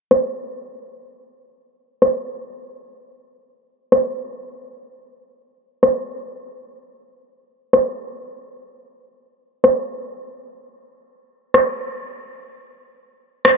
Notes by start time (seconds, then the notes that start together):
0.11 cross-stick
2.02 cross-stick
3.92 cross-stick
5.83 cross-stick
7.73 cross-stick
9.64 cross-stick
11.54 cross-stick
13.45 cross-stick